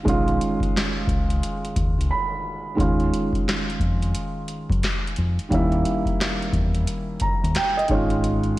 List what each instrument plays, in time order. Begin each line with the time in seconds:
0.03 fingered electric bass B1, felt piano D#3 G#3 C#4, kick
0.08 felt piano F4, closed hi-hat
0.28 closed hi-hat
0.41 closed hi-hat
0.60 kick, closed hi-hat
0.77 snare, clap, closed hi-hat
1.07 fingered electric bass C#2, kick, closed hi-hat
1.30 closed hi-hat
1.43 closed hi-hat
1.65 closed hi-hat
1.76 fingered electric bass D#2, kick, closed hi-hat
1.98 fingered electric bass C#2, closed hi-hat
2.11 felt piano B5
2.75 felt piano D#3 G#3 C#4, kick
2.79 fingered electric bass D#2, felt piano F4, closed hi-hat
3.00 closed hi-hat
3.14 closed hi-hat
3.33 kick, closed hi-hat
3.49 snare, clap, closed hi-hat
3.70 closed hi-hat
3.80 fingered electric bass F2, kick, closed hi-hat
4.02 closed hi-hat
4.15 closed hi-hat
4.48 closed hi-hat
4.70 fingered electric bass F#2, kick, closed hi-hat
4.83 snare, clap, closed hi-hat
5.07 closed hi-hat
5.16 fingered electric bass F2, closed hi-hat
5.39 closed hi-hat
5.49 fingered electric bass D#2, felt piano D#3 G3 A#3, kick, closed hi-hat
5.53 felt piano C#4 E4
5.72 closed hi-hat
5.85 closed hi-hat
6.05 kick, closed hi-hat
6.21 snare, clap, closed hi-hat
6.42 closed hi-hat
6.53 fingered electric bass E2, kick, closed hi-hat
6.74 closed hi-hat
6.87 closed hi-hat
7.20 felt piano A#5, kick, closed hi-hat
7.44 fingered electric bass D#2, closed hi-hat
7.55 felt piano G5, snare, clap, closed hi-hat
7.77 felt piano D#5, closed hi-hat
7.88 fingered electric bass G#1, felt piano D#3 G#3 C#5, kick, closed hi-hat
7.92 felt piano C#4 F4
8.10 closed hi-hat
8.24 closed hi-hat
8.44 closed hi-hat